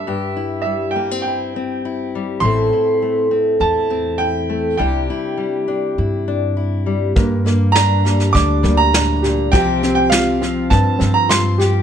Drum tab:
SD |----------------|----------------|----------------|o-o-o-ooo-o-o-o-|
BD |----------------|----------------|----------------|o-------o-------|

SD |o-o-o-o-o-o-o-o-|
BD |o-------o-------|